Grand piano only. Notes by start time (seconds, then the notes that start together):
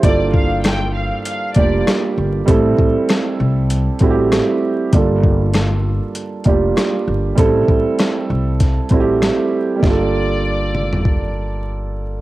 Already playing: E4 C5
0.03 G3 A#3 D4 F4 A4
1.55 G3 A#3 D4 F4 G4
2.46 G3 A3 C4 E4 A4
4.00 G3 A3 C4 E4 F#4
4.10 G4
4.93 G3 A#3 D4 F4 A4
6.45 G3 A#3 D4 F4 G4
7.35 G3 A3 C4 E4 A4
8.90 G3 A3 C4 E4 F#4
9.00 G4
9.76 G3 A#3
9.83 D4 F4
9.90 A4